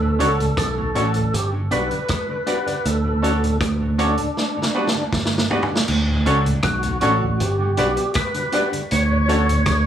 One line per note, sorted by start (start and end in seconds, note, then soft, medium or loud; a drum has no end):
0.00 0.17 D2 loud
0.00 0.10 D2 medium
0.00 0.10 A2 soft
0.00 0.57 A4 medium
0.19 0.55 C#2 medium
0.19 0.31 C#4 medium
0.19 0.29 C#4 medium
0.19 0.29 D4 medium
0.19 0.32 F#4 loud
0.19 0.30 F#4 medium
0.19 0.40 A4 medium
0.19 0.32 A4 medium
0.19 0.40 C#5 medium
0.19 0.32 C#5 loud
0.19 0.40 D5 medium
0.19 0.40 F#5 medium
0.19 closed hi-hat medium
0.38 0.48 D2 medium
0.38 0.48 A2 medium
0.38 closed hi-hat soft
0.57 0.93 B1 loud
0.57 1.36 A4 loud
0.57 kick loud
0.57 cross-stick medium
0.57 closed hi-hat medium
0.77 0.86 D2 medium
0.77 0.86 A2 medium
0.95 1.31 A1 medium
0.95 1.05 C#4 medium
0.95 1.08 C#4 medium
0.95 1.05 D4 medium
0.95 1.05 F#4 medium
0.95 1.08 F#4 medium
0.95 1.15 A4 medium
0.95 1.08 A4 medium
0.95 1.16 C#5 medium
0.95 1.08 C#5 medium
0.95 1.16 D5 medium
0.95 1.16 F#5 medium
0.95 closed hi-hat medium
1.14 1.24 D2 medium
1.14 1.24 A2 medium
1.14 muted clean electric guitar stroke soft
1.14 closed hi-hat medium
1.34 1.69 G1 loud
1.34 1.51 G4 medium
1.34 closed hi-hat medium
1.53 1.62 G2 medium
1.53 1.62 D3 medium
1.71 1.90 B1 loud
1.71 1.81 G3 medium
1.71 1.81 B3 medium
1.71 1.83 D4 medium
1.71 1.81 F#4 medium
1.71 1.84 F#4 medium
1.71 1.91 G4 medium
1.71 1.91 B4 medium
1.71 2.89 B4 loud
1.71 1.84 B4 medium
1.71 1.92 D5 medium
1.71 1.84 D5 medium
1.71 1.92 F#5 loud
1.71 closed hi-hat medium
1.91 2.00 G2 soft
1.91 2.00 D3 medium
1.91 closed hi-hat soft
2.08 kick loud
2.08 cross-stick loud
2.08 closed hi-hat medium
2.28 2.38 G2 medium
2.28 2.38 D3 medium
2.46 2.57 G3 medium
2.46 2.57 B3 medium
2.46 2.59 D4 medium
2.46 2.59 F#4 medium
2.46 2.57 F#4 medium
2.46 2.65 G4 medium
2.46 2.65 B4 medium
2.46 2.60 B4 medium
2.46 2.65 D5 medium
2.46 2.60 D5 medium
2.46 2.66 F#5 loud
2.46 closed hi-hat medium
2.66 2.76 G2 medium
2.66 2.76 D3 medium
2.66 2.85 G4 medium
2.66 2.86 B4 medium
2.66 2.86 D5 medium
2.66 2.86 F#5 medium
2.66 closed hi-hat medium
2.85 3.57 D2 loud
2.85 3.57 A4 medium
2.85 closed hi-hat medium
3.04 3.14 D2 medium
3.04 3.14 A2 medium
3.22 3.35 C#4 medium
3.22 3.33 C#4 medium
3.22 3.33 D4 medium
3.22 3.35 F#4 medium
3.22 3.33 F#4 medium
3.22 3.43 A4 medium
3.22 3.35 A4 medium
3.22 3.43 C#5 medium
3.22 3.36 C#5 medium
3.22 3.43 D5 medium
3.22 3.43 F#5 medium
3.22 closed hi-hat medium
3.42 3.52 D2 medium
3.42 3.52 A2 medium
3.42 closed hi-hat medium
3.61 4.14 D2 medium
3.61 kick loud
3.61 cross-stick loud
3.61 closed hi-hat medium
3.81 3.90 D2 medium
3.81 3.90 A2 medium
3.98 4.11 C#4 medium
3.98 4.09 C#4 medium
3.98 4.09 D4 medium
3.98 5.09 D4 medium
3.98 4.11 F#4 loud
3.98 4.09 F#4 medium
3.98 4.19 A4 medium
3.98 4.11 A4 loud
3.98 4.19 C#5 medium
3.98 4.12 C#5 loud
3.98 4.19 D5 medium
3.98 4.19 F#5 medium
3.98 closed hi-hat medium
4.17 4.28 D2 medium
4.17 4.28 A2 medium
4.17 muted clean electric guitar stroke soft
4.17 closed hi-hat medium
4.37 snare medium
4.57 4.66 G2 medium
4.57 4.66 D3 medium
4.62 snare medium
4.74 4.84 G3 medium
4.74 4.87 B3 medium
4.74 4.85 B3 medium
4.74 4.87 D4 medium
4.74 4.85 F#4 medium
4.74 4.87 F#4 medium
4.74 4.95 G4 medium
4.74 4.95 B4 medium
4.74 4.88 B4 medium
4.74 4.95 D5 medium
4.74 4.95 F#5 loud
4.87 snare medium
4.94 5.04 G2 soft
4.94 5.04 D3 medium
5.13 5.48 G1 medium
5.13 kick loud
5.13 snare medium
5.25 snare medium
5.32 5.42 G2 medium
5.32 5.42 D3 medium
5.38 snare medium
5.50 5.61 G3 medium
5.50 5.62 B3 medium
5.50 5.61 B3 medium
5.50 5.63 D4 medium
5.50 5.63 F#4 medium
5.50 5.61 F#4 medium
5.50 5.70 G4 medium
5.50 5.71 B4 medium
5.50 5.63 B4 medium
5.50 5.71 D5 medium
5.50 5.71 F#5 medium
5.50 floor tom medium
5.63 floor tom medium
5.70 5.80 G2 medium
5.70 5.80 D3 medium
5.75 snare medium
5.88 6.24 D2 loud
5.88 crash loud
6.08 6.17 D2 medium
6.08 6.17 A2 medium
6.26 6.62 C#2 medium
6.26 6.38 C#4 medium
6.26 6.36 C#4 medium
6.26 6.36 D4 medium
6.26 6.38 F#4 medium
6.26 6.36 F#4 medium
6.26 6.46 A4 medium
6.26 6.39 A4 medium
6.26 6.46 C#5 medium
6.26 6.39 C#5 medium
6.26 6.47 D5 medium
6.26 6.47 F#5 loud
6.26 closed hi-hat medium
6.46 6.55 D2 medium
6.46 6.55 A2 medium
6.46 closed hi-hat medium
6.63 6.99 B1 loud
6.63 7.42 F#4 medium
6.63 kick loud
6.63 cross-stick loud
6.63 closed hi-hat medium
6.83 6.93 D2 medium
6.83 6.93 A2 medium
6.83 closed hi-hat medium
7.01 7.38 A1 medium
7.01 7.11 C#4 medium
7.01 7.14 C#4 medium
7.01 7.12 D4 medium
7.01 7.12 F#4 medium
7.01 7.14 F#4 medium
7.01 7.22 A4 medium
7.01 7.14 A4 medium
7.01 7.22 C#5 medium
7.01 7.15 C#5 medium
7.01 7.22 D5 medium
7.01 7.23 F#5 loud
7.01 closed hi-hat medium
7.21 7.30 D2 medium
7.21 7.30 A2 medium
7.21 muted clean electric guitar stroke soft
7.40 7.75 G1 loud
7.40 8.12 G4 medium
7.40 closed hi-hat medium
7.58 7.68 G2 medium
7.58 7.68 D3 medium
7.77 7.96 B1 loud
7.77 7.87 G3 medium
7.77 7.87 B3 medium
7.77 7.90 D4 medium
7.77 7.87 F#4 medium
7.77 7.90 F#4 medium
7.77 7.98 G4 medium
7.77 7.98 B4 medium
7.77 7.90 B4 medium
7.77 7.98 D5 medium
7.77 7.90 D5 medium
7.77 7.98 F#5 loud
7.77 closed hi-hat medium
7.96 8.06 B3 medium
7.96 8.06 F#4 medium
7.96 closed hi-hat medium
8.14 8.69 B4 loud
8.14 kick loud
8.14 cross-stick loud
8.14 closed hi-hat medium
8.34 8.44 G2 medium
8.34 8.44 D3 medium
8.34 closed hi-hat medium
8.52 8.63 G3 medium
8.52 8.63 B3 medium
8.52 8.65 D4 medium
8.52 8.63 F#4 medium
8.52 8.66 F#4 medium
8.52 8.73 G4 medium
8.52 8.66 B4 medium
8.52 8.74 B4 medium
8.52 8.66 D5 medium
8.52 8.74 D5 medium
8.52 8.74 F#5 medium
8.52 closed hi-hat medium
8.72 8.82 G2 medium
8.72 8.82 D3 medium
8.72 closed hi-hat medium
8.91 9.63 D2 loud
8.91 9.86 C#5 loud
8.91 closed hi-hat medium
9.10 9.20 D2 medium
9.10 9.20 A2 medium
9.28 9.39 C#4 medium
9.28 9.41 C#4 medium
9.28 9.39 D4 medium
9.28 9.39 F#4 medium
9.28 9.41 F#4 medium
9.28 9.49 A4 medium
9.28 9.41 A4 medium
9.28 9.49 C#5 medium
9.28 9.42 C#5 medium
9.28 9.49 D5 medium
9.28 9.50 F#5 loud
9.28 closed hi-hat medium
9.47 9.58 D2 medium
9.47 9.57 A2 medium
9.47 closed hi-hat medium
9.66 9.86 D2 loud
9.66 kick loud
9.66 cross-stick medium
9.66 closed hi-hat medium